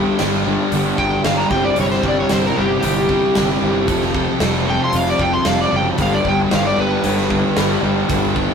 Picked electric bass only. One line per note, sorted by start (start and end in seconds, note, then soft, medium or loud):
0.20 0.56 G1 medium
0.72 0.90 G1 medium
0.98 1.17 G1 medium
1.24 1.43 G1 medium
1.50 1.69 G1 medium
1.78 1.96 G1 medium
2.03 2.22 G1 medium
2.31 2.49 G1 medium
2.58 2.76 G1 medium
2.83 3.20 G1 medium
3.37 3.55 G1 medium
3.62 3.88 G1 medium
3.88 4.25 F1 loud
4.41 4.77 F1 medium
4.93 5.12 F1 medium
5.19 5.38 F1 medium
5.46 5.64 F1 medium
5.73 5.91 F#1 medium
5.99 6.17 G1 medium
6.25 6.43 G1 medium
6.52 6.70 G1 medium
6.78 6.96 G1 medium
7.04 7.41 G1 medium
7.57 7.75 G1 medium
7.83 8.01 G1 medium
8.10 8.46 G1 medium